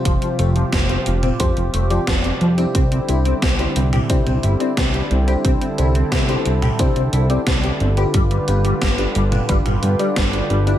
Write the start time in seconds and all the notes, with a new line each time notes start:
Already playing: C3 F3 G3 C4 F4 G4 C5
0.05 F1 F3, kick, closed hi-hat
0.22 F3, closed hi-hat
0.39 F1 A3 C4 F4 G4 C5, closed hi-hat
0.56 F3, closed hi-hat
0.73 F1 F3, kick, snare, closed hi-hat
0.89 C4 F4 G4 C5, closed hi-hat
1.06 F1 F3, closed hi-hat
1.23 C4, closed hi-hat, mid tom
1.40 F1 F3 C4 F4 G4 C5, kick, closed hi-hat
1.57 F1 F3, closed hi-hat
1.74 F1 A3, closed hi-hat
1.90 F3 C4 F4 G4 D5, closed hi-hat
2.07 F1 F3, kick, snare, closed hi-hat
2.24 C4, closed hi-hat
2.41 F2 F3, closed hi-hat
2.58 C4 D4 E4 G4 C5, closed hi-hat
2.75 C2 D3 C4 E4, kick, closed hi-hat
2.92 C4, closed hi-hat
3.08 C2 D4 E4 G4 C5, closed hi-hat
3.25 C4, closed hi-hat
3.42 C2 C4, kick, snare, closed hi-hat
3.59 D4 E4 G4 C5, closed hi-hat
3.76 C2 C4, closed hi-hat
3.93 G4, closed hi-hat, mid tom
4.10 C2 C4 D4 E4 G4 C5, kick, closed hi-hat
4.26 C2 C4, closed hi-hat, mid tom
4.43 G1 E4, closed hi-hat
4.60 C4 D4 E4 G4 D5, closed hi-hat
4.77 C2 C4, kick, snare, closed hi-hat
4.94 G4, closed hi-hat
5.11 C2 C4, closed hi-hat
5.28 D4 E4 G4 C5, closed hi-hat
5.45 C2 C4 A4, kick, closed hi-hat
5.61 C4, closed hi-hat
5.78 C2 D4 E4 G4 C5, closed hi-hat
5.95 C4, closed hi-hat
6.12 C2 C4, kick, snare, closed hi-hat
6.29 D4 E4 G4 C5, closed hi-hat
6.46 C2 C4, closed hi-hat
6.62 G4, closed hi-hat, mid tom
6.79 C2 C4 D4 E4 G4 C5, kick, closed hi-hat
6.96 C2 C4, closed hi-hat
7.13 C2 E4, closed hi-hat
7.30 C4 D4 E4 G4 D5, closed hi-hat
7.47 C2 C4, kick, snare, closed hi-hat
7.64 G4, closed hi-hat
7.80 G1 C4, closed hi-hat
7.97 D4 F4 G4 B4, closed hi-hat
8.14 G1 G3 F4 G4 B4, kick, closed hi-hat
8.31 G3, closed hi-hat
8.48 G1 B3 D4 F4 G4 B4, closed hi-hat
8.65 G3, closed hi-hat
8.82 G1 G3, kick, snare, closed hi-hat
8.98 D4 F4 G4 B4, closed hi-hat
9.15 G1 G3, closed hi-hat
9.32 D4, closed hi-hat, mid tom
9.49 G1 G3 D4 F4 G4 B4, kick, closed hi-hat
9.66 G1 G3, closed hi-hat, mid tom
9.83 G2 B3, closed hi-hat
9.99 G3 D4 F4 G4 D5, closed hi-hat
10.16 G1 G3, kick, snare, closed hi-hat
10.33 D4, closed hi-hat
10.50 G1 G3, closed hi-hat
10.67 D4 E4 G4 B4, closed hi-hat